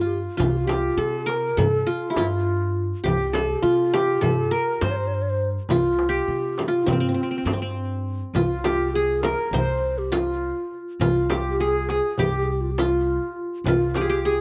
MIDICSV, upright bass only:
0, 0, Header, 1, 2, 480
1, 0, Start_track
1, 0, Tempo, 589391
1, 318, Time_signature, 9, 3, 24, 8
1, 11735, End_track
2, 0, Start_track
2, 0, Title_t, "Upright bass"
2, 0, Program_c, 0, 32
2, 0, Note_on_c, 0, 43, 78
2, 200, Note_off_c, 0, 43, 0
2, 313, Note_on_c, 0, 36, 82
2, 717, Note_off_c, 0, 36, 0
2, 792, Note_on_c, 0, 48, 86
2, 1197, Note_off_c, 0, 48, 0
2, 1283, Note_on_c, 0, 43, 81
2, 1482, Note_off_c, 0, 43, 0
2, 1760, Note_on_c, 0, 43, 86
2, 2363, Note_off_c, 0, 43, 0
2, 2474, Note_on_c, 0, 36, 84
2, 2878, Note_off_c, 0, 36, 0
2, 2957, Note_on_c, 0, 48, 84
2, 3360, Note_off_c, 0, 48, 0
2, 3441, Note_on_c, 0, 43, 75
2, 3641, Note_off_c, 0, 43, 0
2, 3922, Note_on_c, 0, 43, 85
2, 4524, Note_off_c, 0, 43, 0
2, 4632, Note_on_c, 0, 36, 86
2, 5037, Note_off_c, 0, 36, 0
2, 5114, Note_on_c, 0, 48, 81
2, 5518, Note_off_c, 0, 48, 0
2, 5602, Note_on_c, 0, 43, 76
2, 5802, Note_off_c, 0, 43, 0
2, 6069, Note_on_c, 0, 43, 86
2, 6676, Note_off_c, 0, 43, 0
2, 6789, Note_on_c, 0, 36, 83
2, 7597, Note_off_c, 0, 36, 0
2, 7745, Note_on_c, 0, 36, 76
2, 8554, Note_off_c, 0, 36, 0
2, 8955, Note_on_c, 0, 36, 87
2, 9760, Note_off_c, 0, 36, 0
2, 9920, Note_on_c, 0, 36, 92
2, 10723, Note_off_c, 0, 36, 0
2, 11111, Note_on_c, 0, 36, 83
2, 11735, Note_off_c, 0, 36, 0
2, 11735, End_track
0, 0, End_of_file